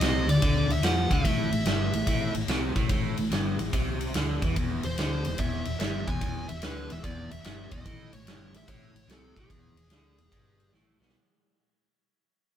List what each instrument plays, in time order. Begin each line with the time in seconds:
Already playing: lead electric guitar D#5
0.00 fingered electric bass C2, overdriven electric guitar C3, snare, ride
0.27 fingered electric bass D2, overdriven electric guitar D3, lead electric guitar D5, ride
0.42 fingered electric bass D2, overdriven electric guitar D3, kick, ride
0.68 fingered electric bass D2, overdriven electric guitar D3, lead electric guitar E5, ride
0.82 fingered electric bass F2, overdriven electric guitar F3, lead electric guitar F#5, snare, ride
1.10 fingered electric bass D2, overdriven electric guitar D3, lead electric guitar E5, kick, ride
1.25 fingered electric bass A1, overdriven electric guitar A2, kick, ride
1.51 fingered electric bass A1, overdriven electric guitar A2, ride
1.64 fingered electric bass G1, overdriven electric guitar G2, snare, ride
1.92 fingered electric bass A1, overdriven electric guitar A2, ride
2.06 fingered electric bass A1, overdriven electric guitar A2, kick, ride
2.35 fingered electric bass A1, overdriven electric guitar A2, ride
2.48 fingered electric bass C2, overdriven electric guitar C3, snare, ride
2.75 fingered electric bass A1, overdriven electric guitar A2, kick, ride
2.89 fingered electric bass A1, overdriven electric guitar A2, kick, ride
3.17 fingered electric bass A1, overdriven electric guitar A2, ride
3.31 fingered electric bass G1, overdriven electric guitar G2, snare, ride
3.59 fingered electric bass A1, overdriven electric guitar A2, ride
3.73 fingered electric bass C2, overdriven electric guitar C3, kick, ride
4.01 ride
4.14 fingered electric bass D2, overdriven electric guitar D3, snare, ride
4.42 fingered electric bass E2, overdriven electric guitar E3, kick, ride
4.56 fingered electric bass E1, overdriven electric guitar E2, kick, ride
4.83 fingered electric bass E1, overdriven electric guitar E2, lead electric guitar C5, ride
4.97 fingered electric bass D2, overdriven electric guitar D3, snare, ride
5.25 fingered electric bass E1, overdriven electric guitar E2, ride
5.38 fingered electric bass E1, overdriven electric guitar E2, lead electric guitar E5, kick, ride
5.65 fingered electric bass E1, overdriven electric guitar E2, ride
5.79 fingered electric bass G1, overdriven electric guitar G2, lead electric guitar E5, snare, ride
6.07 fingered electric bass E1, overdriven electric guitar E2, lead electric guitar G#5, kick, ride
6.21 fingered electric bass E1, overdriven electric guitar E2, kick, ride
6.48 fingered electric bass E1, overdriven electric guitar E2, lead electric guitar E5, ride
6.62 fingered electric bass D2, overdriven electric guitar D3, lead electric guitar B4, snare, ride
6.90 fingered electric bass E1, overdriven electric guitar E2, lead electric guitar E5, ride
7.03 fingered electric bass E1, overdriven electric guitar E2, lead electric guitar D5, kick, ride
7.31 fingered electric bass E1, overdriven electric guitar E2, lead electric guitar E5, ride
7.44 fingered electric bass G1, overdriven electric guitar G2, lead electric guitar E5, snare, ride
7.71 fingered electric bass E1, overdriven electric guitar E2, lead electric guitar D#5, kick, ride
7.85 fingered electric bass A1, overdriven electric guitar A2, kick, ride
8.13 fingered electric bass A1, overdriven electric guitar A2, lead electric guitar C#5, ride
8.26 fingered electric bass G1, overdriven electric guitar G2, snare, ride
8.52 fingered electric bass A1, overdriven electric guitar A2, ride
8.57 lead electric guitar E5
8.68 fingered electric bass A1, overdriven electric guitar A2, lead electric guitar C#5, kick, ride
8.93 fingered electric bass A1, overdriven electric guitar A2, ride
9.07 fingered electric bass C2, overdriven electric guitar C3, snare, ride
9.11 lead electric guitar A4
9.36 fingered electric bass A1, overdriven electric guitar A2, lead electric guitar G#4, kick, ride
9.49 fingered electric bass E1, overdriven electric guitar E2, kick, ride
9.74 fingered electric bass E1, overdriven electric guitar E2, ride
9.89 fingered electric bass D2, overdriven electric guitar D3, snare, ride
10.18 fingered electric bass E1, overdriven electric guitar E2, snare, ride
10.31 fingered electric bass G1, overdriven electric guitar G2, kick, ride
10.60 ride
10.72 fingered electric bass A1, overdriven electric guitar A2, snare
11.00 fingered electric bass B1, overdriven electric guitar B2, snare
11.09 snare